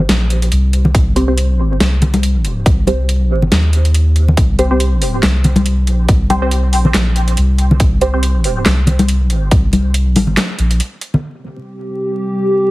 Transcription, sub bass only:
0.09 A#1
0.52 C2
0.95 C2
1.80 C2
2.66 C2
3.52 D#2
4.37 C2
5.23 C2
5.82 B1
6.09 C2
6.68 B1
6.94 A#1
7.37 C2
7.80 C2
8.66 C2
9.51 C2
10.59 A#1

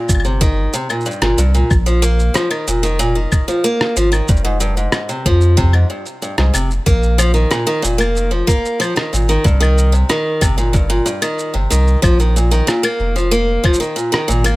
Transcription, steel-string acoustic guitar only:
Already playing: A#2
0.25 C3
0.41 D#3
0.73 C3
0.90 A#2
1.06 G2
1.22 A#2
1.38 G2
1.54 A#2
1.86 F3
2.02 A#3
2.34 F3
2.50 D#3
2.67 A#2
2.83 D#3
2.99 A#2
3.15 D#3
3.48 F3
3.64 A#3
3.97 F3
4.12 D#3
4.29 G2
4.45 G#2
4.60 G2
4.77 G#2
5.09 C3
5.26 F3
5.57 C3
5.74 G#2
5.90 G2
6.22 G2
6.38 G#2
6.54 C3
6.86 A#3
7.18 F3
7.34 D#3
7.51 A#2
7.67 D#3
7.82 A#2
7.98 A#3
8.31 F3
8.47 A#3
8.80 F3
8.96 D#3
9.13 A#2
9.29 D#3
9.44 G2
9.60 D#3
9.92 C3
10.09 D#3
10.41 C3
10.58 A#2
10.73 G2
10.90 A#2
11.06 G2
11.22 D#3
11.54 C3
11.70 D#3
12.02 F3
12.20 D#3
12.36 A#2
12.51 D#3
12.67 A#2
12.83 A#3
13.16 F3
13.31 A#3
13.64 F3
13.80 D#3
13.96 A#2
14.12 D#3
14.28 A#2
14.44 A#3

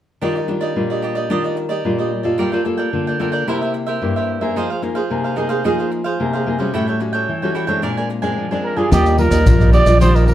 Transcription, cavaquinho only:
0.21 D4 G4 D5 D#5
0.35 G4 D5 D#5
0.48 muted cavaquinho stroke
0.61 G4 D5 D#5
0.90 G4 D5 D#5
1.02 D4 G4 D5 D#5
1.15 G4 D5 D#5
1.30 D4 G4 D5 D#5
1.44 G4 D5 D#5
1.57 muted cavaquinho stroke
1.69 G4 D5 D#5
1.98 G4 D5 D#5
2.23 G4 D5 D#5
2.38 F4 A#4 D5 G5
2.52 A#4 D5 G5
2.65 muted cavaquinho stroke
2.78 A#4 D5 G5
3.07 A#4 D5 G5
3.20 F4 A#4 D5 G5
3.32 A#4 D5 G5
3.48 E4 A#4 C5 E5
3.62 A#4 C5 E5
3.74 muted cavaquinho stroke
3.87 A#4 C5 E5
4.16 A#4 C5 E5
4.41 A#4 C5 E5
4.56 D#4 G#4 C5 F5
4.70 G#4 C5 F5
4.82 muted cavaquinho stroke
4.95 G#4 C5 F5
5.24 G#4 C5 F5
5.36 D#4 G#4 C5 F5
5.49 G#4 C5 F5
5.64 D#4 G#4 C5 F5
5.79 G#4 C5 F5
5.91 muted cavaquinho stroke
6.04 G#4 C5 F5
6.33 G#4 C5 F5
6.59 G#4 C5 F5
6.74 E4 A4 C#5 G5
6.88 A4 C#5 G5
7.00 muted cavaquinho stroke
7.13 A4 C#5 G5
7.42 A4 C#5 G5
7.55 E4 A4 C#5 G5
7.67 A4 C#5 G5
7.82 D4 A#4 D5 G#5
7.97 A#4 D5 G#5
8.10 muted cavaquinho stroke
8.22 A#4 D5 G#5
8.51 A#4 D5 G#5
8.76 A#4 D5 G#5
8.91 D4 G4 D5 D#5
9.06 G4 D5 D#5
9.18 muted cavaquinho stroke
9.31 G4 D5 D#5
9.60 G4 D5 D#5
9.72 D4 G4 D5 D#5
9.85 G4 D5 D#5
10.00 D4 G4 D5 D#5
10.14 G4 D5 D#5
10.27 muted cavaquinho stroke

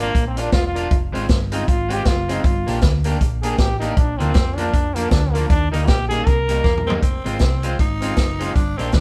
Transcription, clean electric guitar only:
0.00 D4 F4
0.14 muted clean electric guitar stroke
0.37 A#3 D4 F4
0.75 A#3 D4 F4
1.13 G#3 C4 F4
1.52 G#3 C4 F4
1.89 G#3 C4 F4
2.29 G#3 C4 F4
2.67 A#3 D4 G4
3.05 A#3 D4 G4
3.43 A#3 D4 G4
3.80 A#3 D4 G4
4.19 F3 A#3 D4
4.58 F3 A#3 D4
4.96 F3 A#3 D4
5.34 F3 A#3 D4
5.72 G3 A#3 D#4
6.11 G3 A#3 D#4
6.48 G3 A#3 D#4
6.87 G3 A#3 D#4
7.25 G#3 C4 F4
7.63 G#3 C4 F4
8.02 G#3 C4 F4
8.39 G#3 C4 F4
8.78 A#3 D4 G4

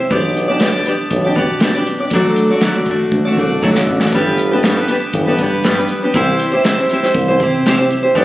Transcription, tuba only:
0.11 B1
1.11 B1
1.36 B2
2.11 D2
3.12 D2
3.37 C2
3.62 B1
3.88 A1
4.12 G1
5.14 G1
5.39 G2
6.14 C2
7.15 C2
7.40 C3
8.15 B1

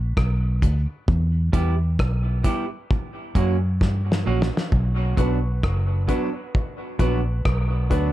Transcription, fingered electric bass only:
Already playing: A#1
0.17 B1
0.63 D2
1.08 E2
1.54 E2
2.00 B1
3.36 F#2
3.81 G2
4.27 A#1
4.72 B1
5.18 B1
5.64 F#1
7.00 A#1
7.46 B1
7.91 D2

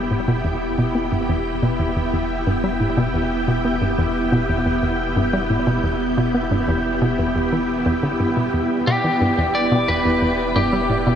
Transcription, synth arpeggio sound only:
Already playing: G3
0.11 A2
0.28 B2
0.45 E2
0.78 B2
0.95 B3
1.12 G2
1.29 E2
1.63 B2
1.80 E2
1.96 E2
2.13 E2
2.47 G2
2.64 G3
2.80 A2
2.97 B2
3.14 E2
3.48 B2
3.65 B3
3.82 G2
3.99 E2
4.32 B2
4.49 E2
4.66 E2
4.83 E2
5.16 G2
5.33 G3
5.50 A2
5.67 B2
5.84 E2
6.17 B2
6.34 B3
6.51 G2
6.68 E2
7.02 B2
7.19 E2
7.36 E2
7.52 E3
7.86 E2
8.03 D3
8.20 G2
8.37 B2
8.54 E2
8.87 B2
9.04 E3
9.21 G2
9.38 E2
9.72 B2
9.89 E2
10.06 E2
10.22 E2
10.56 G2
10.73 G3
10.90 A2
11.07 B2

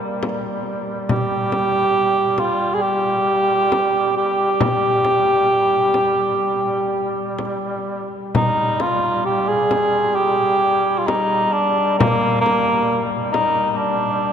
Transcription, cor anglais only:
1.11 G4
2.39 F4
2.74 G#4
2.82 G4
4.17 G4
8.36 D#4
8.81 F4
9.26 G4
9.48 G#4
10.15 G4
10.99 F4
11.07 D#4
11.53 D4
11.99 A#3
12.41 A#3
13.32 D#4
13.71 D#4
13.77 D4

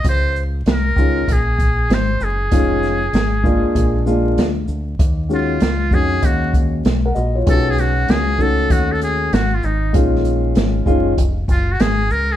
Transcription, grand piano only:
0.97 D#3 G#3 C#4 F4
2.51 D#3 G#3 C#4 F4
3.43 G#3 A#3 D4 F4
4.06 G#3 A#3 D4 F4
5.29 D#3 G#3 C#4 F#4
5.92 D#3 G#3 C#4 F#4
7.05 A#4 F#5
7.15 F#4 D#5
7.35 F4 C#5
7.46 D#3 G#3 C#4 F4
7.53 F#4
8.39 D#3 A3 C#4 F#4
9.93 D#3 G#3 C#4 F4
10.86 D#3 G#3 C#4 F4

